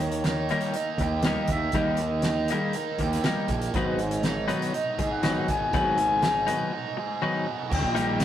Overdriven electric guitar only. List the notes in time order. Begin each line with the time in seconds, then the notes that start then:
Already playing: D#3
0.24 D#4
0.49 A#3
0.73 D#4
0.99 G4
1.24 D#4
1.49 A#3
1.74 D#3
2.24 D#4
2.50 A#3
2.75 D#4
3.00 G4
3.24 D#4
3.49 A#3
3.74 G#2
4.24 D#4
4.49 B3
4.74 D#4
4.99 G#4
5.22 D#4
5.49 B3
5.73 G#2
6.23 D#4
6.47 B3
6.73 D#4
6.99 G#4
7.23 D#4
7.46 B3
7.70 D#3 G3 A#3 D#4 G4